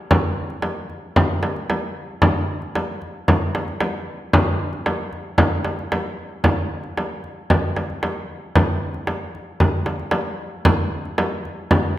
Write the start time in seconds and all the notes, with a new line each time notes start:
0.11 frame drum
0.50 frame drum
0.62 frame drum
0.90 frame drum
1.16 frame drum
1.43 frame drum
1.56 frame drum
1.70 frame drum
2.22 frame drum
2.62 frame drum
2.75 frame drum
3.02 frame drum
3.28 frame drum
3.55 frame drum
3.68 frame drum
3.81 frame drum
4.33 frame drum
4.73 frame drum
4.86 frame drum
5.13 frame drum
5.38 frame drum
5.65 frame drum
5.79 frame drum
5.92 frame drum
6.44 frame drum
6.84 frame drum
6.98 frame drum
7.24 frame drum
7.50 frame drum
7.76 frame drum
7.90 frame drum
8.03 frame drum
8.55 frame drum
8.94 frame drum
9.07 frame drum
9.35 frame drum
9.60 frame drum
9.86 frame drum
9.99 frame drum
10.11 frame drum
10.65 frame drum
11.05 frame drum
11.18 frame drum
11.45 frame drum
11.71 frame drum